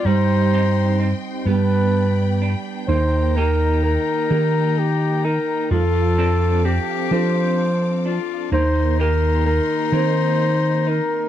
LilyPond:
<<
  \new Staff \with { instrumentName = "String section" } { \time 6/8 \key c \minor \tempo 4. = 43 << { <ees'' c'''>4. <d'' b''>4. | <ees'' bes''>2. | <f'' d'''>2. | <ees'' c'''>2. | } \\ { g''2.~ | g''2. | a'2. | bes'2. | } >> }
  \new Staff \with { instrumentName = "Flugelhorn" } { \time 6/8 \key c \minor c''4 r8 b'4 r8 | c''8 bes'8 bes'4 g'8 bes'8 | a'4 g'8 c''4 r8 | c''8 bes'8 bes'8 c''4 bes'8 | }
  \new Staff \with { instrumentName = "Clarinet" } { \time 6/8 \key c \minor ees'4 r8 d'4 r8 | ees'2. | f'4 g'4 r8 f'8 | ees'2. | }
  \new Staff \with { instrumentName = "Grand piano" } { \time 6/8 \key c \minor g4. g4. | ees4. <ees' g' bes'>4. | f4. <d' f' a'>4. | ees4. <c' ees' bes'>4. | }
  \new Staff \with { instrumentName = "Clean electric guitar" } { \time 6/8 \key c \minor g8 <c' ees' g'>8 c'8 b4 d'8 | bes8 <bes ees' g'>8 bes8 bes4 ees'8 | f8 <c' d' a'>8 c'8 c'4 d'8 | bes8 <bes ees' g'>8 bes8 bes4 ees'8 | }
  \new Staff \with { instrumentName = "Fingered electric bass" } { \clef bass \time 6/8 \key c \minor g,4. g,4. | ees,4. ees4. | f,4. f4. | ees,4. ees4. | }
>>